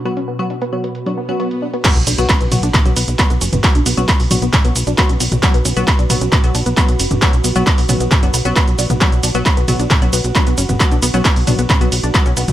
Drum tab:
CC |----------------|x---------------|----------------|----------------|
RD |----------------|x-x-x-x-x-x-x-x-|x-x-x-x-x-x-x-x-|x-x-x-x-x-x-x-x-|
HH |xx-xxx-xxx-xxx-x|xxoxxxoxxxoxxxox|xxoxxooxxxoxxxox|xxoxxxoxxxoxxxox|
SH |----------------|xxxxxxxxxxxxxxxx|xxxxxxxxxxxxxxxx|xxxxxxxxxxxxxxxx|
CP |----------------|x---x---x---x---|x---x---x---x---|x---x---x---x---|
T2 |----------------|------o-o------o|------o-o------o|------o-o------o|
BD |----------------|o---o---o---o---|o---o---o---o---|o---o---o---o---|

CC |----------------|----------------|----------------|
RD |x-x-x-x-x-x-x-x-|x-x-x-x-x-x-x-x-|x-x-x-x-x-x-x-x-|
HH |xxoxxooxxxoxxxox|xxoxxxoxxxoxxxox|xxoxxooxxxoxxxox|
SH |xxxxxxxxxxxxxxxx|xxxxxxxxxxxxxxxx|xxxxxxxxxxxxxxxx|
CP |x---x---x---x---|x---x---x---x---|x---x---x---x---|
T2 |------o-o------o|------o-o------o|------o-o------o|
BD |o---o---o---o---|o---o---o---o---|o---o---o---o---|